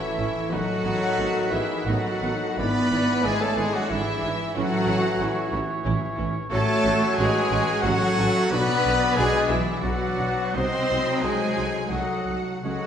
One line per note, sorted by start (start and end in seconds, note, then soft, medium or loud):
0.00 0.54 A2 medium
0.00 0.36 E3 medium
0.00 0.47 E3 loud
0.00 0.51 E3 medium
0.00 0.52 E3 medium
0.00 0.20 C#4 medium
0.00 0.51 E4 medium
0.00 0.51 A4 medium
0.00 2.62 A4 medium
0.00 0.48 C#5 loud
0.00 0.56 C#5 medium
0.00 0.52 E5 loud
0.00 2.62 A5 medium
0.18 0.26 A1 medium
0.18 0.26 C#4 medium
0.18 0.56 C#4 medium
0.18 0.26 E4 medium
0.38 0.56 E3 medium
0.50 0.59 A1 medium
0.50 2.53 D#3 medium
0.50 1.52 F#3 loud
0.50 1.52 F#3 medium
0.50 0.58 B3 medium
0.50 0.59 D#4 medium
0.50 1.54 F#4 loud
0.50 1.53 F#4 loud
0.50 1.54 A4 loud
0.50 2.54 B4 loud
0.50 1.51 F#5 loud
0.55 2.62 A2 medium
0.71 2.62 A3 medium
0.84 0.92 A1 medium
0.84 0.93 B3 medium
0.84 2.41 B3 medium
0.84 0.93 D#4 medium
1.05 1.37 D#4 medium
1.18 1.26 A1 medium
1.18 1.28 B3 medium
1.18 1.27 D#4 medium
1.38 2.21 D#4 medium
1.51 1.60 A1 medium
1.51 1.85 E3 loud
1.51 1.86 E3 medium
1.51 1.62 B3 medium
1.51 1.62 D#4 medium
1.51 1.87 E4 medium
1.51 1.86 E4 medium
1.51 1.87 G#4 medium
1.51 1.86 D#5 medium
1.51 1.85 E5 loud
1.70 3.75 B5 medium
1.85 1.93 A1 loud
1.85 2.58 F#3 medium
1.85 2.57 F#3 medium
1.85 1.96 B3 medium
1.85 1.96 D#4 medium
1.85 2.57 F#4 medium
1.85 2.58 F#4 medium
1.85 2.55 A4 medium
1.85 2.61 D#5 medium
1.85 2.58 F#5 loud
2.05 3.24 B4 medium
2.22 2.30 A1 medium
2.22 2.31 B3 medium
2.22 2.61 D#4 medium
2.22 2.31 D#4 medium
2.42 4.59 B3 medium
2.56 2.66 G#1 medium
2.56 4.58 G#2 medium
2.56 6.35 E3 loud
2.56 3.23 B3 loud
2.56 3.25 B3 loud
2.56 2.67 D4 medium
2.56 3.26 B4 loud
2.56 3.23 B4 loud
2.56 3.23 D5 loud
2.56 4.27 D5 loud
2.56 3.23 B5 loud
2.60 2.68 E4 medium
2.77 4.59 G#3 medium
2.91 2.99 G#1 medium
2.91 3.00 D4 medium
2.91 4.39 D4 medium
2.91 3.01 E4 medium
3.09 4.23 E4 medium
3.22 3.32 G#1 medium
3.22 3.40 G#3 loud
3.22 3.41 G#3 loud
3.22 3.33 D4 medium
3.22 3.41 G#4 loud
3.22 3.43 G#4 loud
3.22 3.42 B4 loud
3.22 3.41 G#5 loud
3.26 3.34 E4 medium
3.40 3.57 A3 loud
3.40 3.58 A4 loud
3.40 3.58 C#5 loud
3.40 3.57 A5 loud
3.56 3.65 G#1 medium
3.56 3.73 G#3 loud
3.56 3.66 D4 medium
3.56 3.66 E4 medium
3.56 3.75 G#4 loud
3.56 3.74 B4 loud
3.56 3.74 G#5 loud
3.60 3.90 E5 medium
3.72 3.90 F#3 loud
3.72 3.91 F#3 medium
3.72 3.91 F#4 loud
3.72 3.91 F#4 medium
3.72 3.90 A4 medium
3.72 3.90 F#5 loud
3.76 4.59 B5 medium
3.89 3.99 G#1 loud
3.89 4.39 E3 loud
3.89 4.56 E3 loud
3.89 4.00 D4 medium
3.89 4.32 E4 loud
3.89 3.99 E4 medium
3.89 4.32 G#4 loud
3.89 4.55 E5 loud
3.89 5.55 E5 medium
3.94 4.57 E4 medium
4.08 4.58 D5 medium
4.23 4.31 G#1 medium
4.23 4.33 D4 medium
4.23 5.05 E4 medium
4.23 4.33 E4 medium
4.40 4.58 D4 medium
4.53 4.63 A1 medium
4.53 6.51 A2 loud
4.53 5.51 F#3 loud
4.53 4.64 C#4 medium
4.53 4.64 E4 medium
4.53 5.48 F#4 loud
4.53 5.48 A4 loud
4.53 6.46 C#5 loud
4.53 5.52 F#5 loud
4.58 5.52 F#4 loud
4.74 6.55 E3 medium
4.86 4.94 A1 medium
4.86 4.96 C#4 medium
4.86 6.36 C#4 medium
4.86 4.96 E4 medium
5.06 5.38 E4 medium
5.18 5.26 A1 medium
5.18 5.29 C#4 medium
5.18 5.29 E4 medium
5.39 6.20 E4 medium
5.53 5.61 A1 loud
5.53 5.61 C#4 medium
5.53 5.61 E4 medium
5.53 5.88 E5 medium
5.72 7.65 C#6 medium
5.84 5.94 A1 loud
5.84 5.93 C#4 medium
5.84 5.92 E4 loud
5.89 6.55 E5 medium
6.05 7.17 C#5 medium
6.18 6.26 A1 medium
6.18 6.26 C#4 medium
6.18 6.26 E4 medium
6.18 6.55 E4 medium
6.37 6.86 C#4 medium
6.50 6.61 A1 loud
6.50 8.55 A2 loud
6.50 7.78 F#3 loud
6.50 7.13 A3 loud
6.50 7.14 A3 loud
6.50 6.58 C#4 medium
6.50 6.59 F#4 loud
6.50 7.19 A4 loud
6.50 7.14 A4 loud
6.50 7.77 C#5 loud
6.50 7.14 C#5 loud
6.50 7.15 A5 loud
6.69 8.54 A3 medium
6.85 6.93 A1 loud
6.85 6.93 C#4 medium
6.85 8.33 C#4 medium
6.85 6.94 F#4 medium
7.03 7.34 F#4 medium
7.17 7.26 A1 loud
7.17 7.82 G#3 loud
7.17 7.83 G#3 loud
7.17 7.26 C#4 medium
7.17 7.26 F#4 medium
7.17 7.83 G#4 loud
7.17 7.82 G#4 loud
7.17 7.85 B4 loud
7.17 7.99 C#5 medium
7.17 7.82 G#5 loud
7.35 8.16 F#4 medium
7.51 7.59 A1 loud
7.51 7.59 C#4 medium
7.51 7.59 F#4 medium
7.51 7.81 F#5 medium
7.66 8.54 C#6 medium
7.81 7.91 A1 loud
7.81 8.51 F#3 loud
7.81 8.50 F#3 loud
7.81 7.92 C#4 medium
7.81 8.52 F#4 loud
7.81 7.91 F#4 medium
7.81 8.52 F#4 loud
7.81 8.52 A4 loud
7.81 8.54 C#5 loud
7.81 8.16 F#5 loud
7.81 9.47 F#5 medium
7.85 8.53 F#3 loud
8.00 8.54 C#5 medium
8.15 8.26 A1 loud
8.15 8.25 C#4 medium
8.15 8.25 F#4 medium
8.15 8.98 F#4 medium
8.15 8.25 G#5 loud
8.25 8.34 F#5 loud
8.34 8.54 C#4 medium
8.34 8.43 E5 loud
8.42 8.51 F#5 loud
8.50 8.60 B1 medium
8.50 10.59 B2 loud
8.50 9.80 F#3 loud
8.50 9.17 B3 loud
8.50 9.16 B3 loud
8.50 8.60 D4 medium
8.50 8.60 F#4 loud
8.50 9.18 B4 loud
8.50 9.15 B4 loud
8.50 9.81 D5 loud
8.50 9.17 D5 loud
8.50 9.14 B5 loud
8.68 10.73 F#3 medium
8.84 8.93 B1 loud
8.84 10.36 B3 medium
8.84 8.93 D4 medium
8.84 8.93 F#4 medium
9.14 9.24 B1 loud
9.14 9.49 G#3 loud
9.14 9.25 D4 medium
9.14 9.25 F#4 medium
9.14 9.50 G#4 loud
9.14 9.49 G#4 loud
9.14 9.52 B4 loud
9.14 9.47 G#5 loud
9.48 9.57 B1 medium
9.48 9.83 E3 medium
9.48 9.83 E3 loud
9.48 9.57 D4 medium
9.48 9.81 E4 medium
9.48 9.82 E4 medium
9.48 9.56 F#4 medium
9.48 9.84 G#4 loud
9.48 9.82 E5 loud
9.48 9.81 F#5 medium
9.65 10.58 D6 medium
9.81 9.90 B1 loud
9.81 10.55 F#3 loud
9.81 10.57 F#3 loud
9.81 9.90 D4 medium
9.81 9.89 F#4 medium
9.81 10.57 F#4 medium
9.81 10.57 B4 loud
9.81 10.57 D5 loud
9.81 10.55 F#5 loud
9.81 11.56 F#5 medium
9.99 10.58 B4 medium
10.17 10.26 B1 medium
10.17 10.26 D4 medium
10.17 10.25 F#4 medium
10.17 11.06 F#4 medium
10.37 10.58 B3 medium
10.55 10.64 C2 medium
10.55 12.67 C3 medium
10.55 11.88 F#3 loud
10.55 11.23 C4 loud
10.55 10.64 D#4 medium
10.55 10.63 F#4 medium
10.55 11.24 C5 loud
10.55 11.23 C5 loud
10.55 11.74 D#5 loud
10.55 11.25 D#5 loud
10.55 11.23 C6 loud
10.74 12.68 F#3 medium
10.90 10.98 C2 medium
10.90 12.45 A3 medium
10.90 10.98 D#4 medium
10.90 10.98 F#4 medium
11.07 12.26 F#4 medium
11.22 11.31 C2 medium
11.22 11.91 G#3 loud
11.22 11.90 G#3 loud
11.22 11.31 D#4 medium
11.22 11.31 F#4 medium
11.22 11.93 G#4 medium
11.22 11.92 G#4 medium
11.22 11.91 C5 loud
11.22 11.91 G#5 loud
11.40 12.07 A4 medium
11.56 11.65 C2 medium
11.56 11.65 D#4 medium
11.56 11.64 F#4 medium
11.56 11.89 F#5 medium
11.73 12.67 D#6 medium
11.89 11.99 C2 medium
11.89 12.61 F#3 medium
11.89 12.63 F#3 medium
11.89 12.37 F#3 medium
11.89 11.98 D#4 medium
11.89 12.60 F#4 medium
11.89 11.99 F#4 medium
11.89 12.38 F#4 medium
11.89 12.37 A4 medium
11.89 12.37 D#5 medium
11.89 12.67 F#5 medium
11.89 12.64 F#5 loud
12.09 12.67 A4 soft
12.26 12.34 C2 medium
12.26 12.36 D#4 medium
12.26 12.67 F#4 medium
12.26 12.35 F#4 medium
12.46 12.67 A3 medium
12.62 12.71 C#2 medium
12.62 12.87 C#3 medium
12.62 12.87 F#3 medium
12.62 12.87 G#3 medium
12.62 12.74 C#4 medium
12.62 12.87 F#4 medium
12.62 12.87 A4 medium
12.62 12.87 C#5 medium
12.62 12.87 F#5 loud
12.82 12.87 C#4 soft